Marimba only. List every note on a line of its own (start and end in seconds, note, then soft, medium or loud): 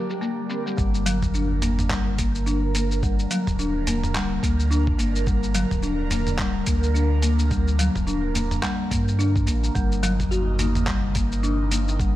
0.10 0.22 G4 medium
0.22 0.37 A#3 medium
0.50 0.65 C4 medium
0.66 0.76 G3 medium
0.77 0.93 G3 medium
1.06 1.22 F#3 medium
1.34 1.50 D4 medium
1.62 1.71 A#3 medium
1.90 2.17 G3 medium
2.18 2.34 A#3 medium
2.46 2.62 D4 medium
2.75 2.84 A#3 medium
3.03 3.18 G3 medium
3.31 3.46 F#3 medium
3.59 3.74 D4 medium
3.87 3.96 A#3 medium
4.15 4.42 G3 loud
4.43 4.58 A#3 medium
4.71 4.86 D4 medium
4.99 5.08 A#3 medium
5.27 5.42 G3 medium
5.55 5.70 F#3 medium
5.83 5.98 D4 medium
6.11 6.20 A#3 medium
6.39 6.66 G3 medium
6.66 6.82 A#3 medium
6.95 7.10 D4 medium
7.22 7.32 A#3 medium
7.51 7.66 G3 medium
7.79 7.95 F#3 loud
8.07 8.23 D4 medium
8.35 8.44 A#3 medium
8.63 8.90 G3 loud
8.91 9.07 A#3 medium
9.19 9.35 D4 medium
9.47 9.56 A#3 medium
9.75 9.91 G3 medium
10.03 10.19 F#3 medium
10.31 10.58 F#4 loud
10.59 10.69 A#3 medium
10.87 11.14 G3 loud
11.15 11.31 A#3 medium
11.43 11.59 D4 medium
11.71 11.81 A#3 medium
11.99 12.15 G3 medium